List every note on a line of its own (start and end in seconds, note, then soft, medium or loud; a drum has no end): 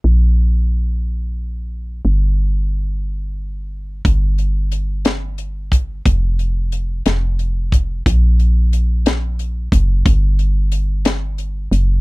0.04 2.01 A#1 medium
2.05 4.01 G1 medium
4.05 6.01 G1 medium
4.05 kick medium
4.05 closed hi-hat medium
4.38 closed hi-hat soft
4.72 closed hi-hat soft
5.05 snare medium
5.05 closed hi-hat medium
5.38 closed hi-hat soft
5.72 kick medium
5.72 closed hi-hat medium
6.05 7.02 F1 medium
6.05 kick medium
6.05 closed hi-hat medium
6.39 closed hi-hat soft
6.72 closed hi-hat soft
7.06 8.02 F1 medium
7.06 snare medium
7.06 closed hi-hat medium
7.39 closed hi-hat soft
7.72 kick medium
7.72 closed hi-hat medium
8.06 9.68 A#1 medium
8.06 kick medium
8.06 closed hi-hat medium
8.40 closed hi-hat soft
8.73 closed hi-hat soft
9.06 snare medium
9.06 closed hi-hat medium
9.39 closed hi-hat soft
9.72 10.03 F#1 medium
9.72 kick medium
9.72 closed hi-hat medium
10.06 11.68 G1 medium
10.06 kick medium
10.06 closed hi-hat medium
10.39 closed hi-hat soft
10.72 closed hi-hat soft
11.05 snare medium
11.05 closed hi-hat medium
11.38 closed hi-hat soft
11.71 12.01 F#1 medium
11.71 closed hi-hat medium